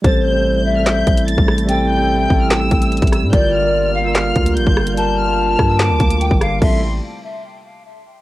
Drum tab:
CC |--------------------------------|--------------------------------|--------------------------------|--------------------------------|
HH |x---------------x---x-x-x-----x-|x---------------x---x-x-xxxxx---|x---------------x---x-x-x-----x-|x---------------x---x-x-x---x---|
CP |----------------x---------------|----------------x---------------|----------------x---------------|----------------x---------------|
SD |----------------o-----------r---|----------------o-----------r---|----------------o-----------r---|------------r---o-----------r---|
BD |o-------------------o-----o-----|------------o-------o-----o-----|o-------------------o-----o-----|------------o-------o-----o-----|

CC |x-------------------------------|
HH |--------------------------------|
CP |--------------------------------|
SD |--------------------------------|
BD |o-------------------------------|